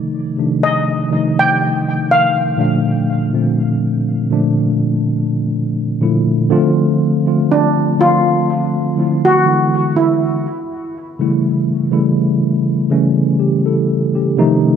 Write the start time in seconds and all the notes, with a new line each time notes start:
Already playing: C3 D#3 F3 A3 D#4 D5
0.37 C3 D#3 F3 A3 D4
0.63 D#5
1.09 C3 D#3 F3 A3 D#4
1.39 G5
2.11 F5
2.57 A#2 D3 F3 A3 D4
3.33 A#2 D3 F3 A3 C4
4.31 A#2 D3 F3 A3 D4
6.01 A#2 D3 F3 A3 E4
6.50 D3 F3 A3 C4 F4
7.26 D3 F3 A3 C4 F4
7.51 D4
7.98 D3 F3 A3 C4 F4
8.96 D3 F3 A3 C4 E4
9.25 F#4
9.45 D3 E3 G#3 B3 E4
9.96 E4
11.19 C#3 E3 G3 A3 E4
11.91 C#3 E3 G3 A3 E4
12.90 C#3 E3 G3 A3 C#4
13.40 C#4 G4
13.66 E4 A4
14.15 C#4 G4
14.37 C3 D#3 F3 A3 D#4